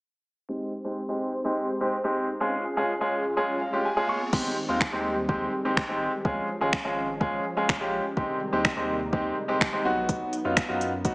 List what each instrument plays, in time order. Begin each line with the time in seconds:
0.49 grand piano G#3 C4 D#4 G4, analog synth pad G#3 C4 D#4 G4 C5
0.84 grand piano G#3 C4 D#4 G4
1.09 grand piano G#3 C4 D#4 G4
1.45 grand piano G#3 C4 D#4 G4
1.81 grand piano G#3 C4 D#4 G4
2.04 grand piano G#3 C4 D#4 G4
2.40 grand piano G#3 C#4 F4 G#4, analog synth pad C#4 F4 G#4, riser
2.77 grand piano G#3 C#4 F4 G#4
3.01 grand piano G#3 C#4 F4 G#4
3.37 grand piano G#3 C#4 F4 G#4
3.61 grand piano F5
3.73 grand piano G#3 C#4 F4 G4
3.85 grand piano G#5
3.96 grand piano G#3 C#4 F4 G#4
4.09 grand piano C#6
4.33 sub bass G#1, analog synth pad D#3 G3 G#3 C4 G4, grand piano G#3 C4 D#4 G4, kick, crash
4.69 sub bass D#2, grand piano G#3 C4 D#4 F4
4.81 finger snap, kick
4.93 sub bass D#2, grand piano G#3 C4 D#4 G4
5.29 grand piano G#3 C4 D#4 G4, kick
5.65 grand piano G#3 C4 D#4 G4
5.77 sub bass G#1, finger snap, kick
5.89 grand piano G#3 C4 D#4 G4
6.25 sub bass C#2, analog synth pad F3 C#4, grand piano G#3 C#4 F4 G#4, kick
6.61 sub bass G#1, grand piano G#3 C#4 F4 G#4
6.73 finger snap, kick
6.85 sub bass G#1, grand piano G#3 C#4 F4 G#4
7.20 grand piano G#3 C#4 F4 G#4, kick
7.57 grand piano G#3 C#4 F4 G#4
7.69 sub bass A#1, finger snap, kick
7.81 grand piano G#3 C#4 F4 G4
8.17 sub bass G#1, analog synth pad C3 D#3 G3 D#4, grand piano G#3 C4 D#4 G4, kick
8.53 sub bass D#2, grand piano G#3 C4 D#4 G4
8.65 finger snap, kick
8.77 sub bass D#2, grand piano G#3 C4 D#4 G4
9.12 grand piano G#3 C4 D#4 G4, kick
9.48 grand piano G#3 C4 D#4 G4
9.61 sub bass G#1, finger snap, kick
9.73 grand piano G#3 C4 D#4 G4
9.85 sub bass B1, grand piano F#3 B3 D#4 F#4, analog synth pad F#3 B3
10.09 kick, closed hi-hat
10.33 closed hi-hat
10.45 sub bass F#2, grand piano F#3 B3 D#4 F4
10.57 finger snap, kick, closed hi-hat
10.68 sub bass F#2, grand piano F#3 B3 D#4 F4
10.81 closed hi-hat
11.05 grand piano F#3 B3 D#4 F#4, kick, closed hi-hat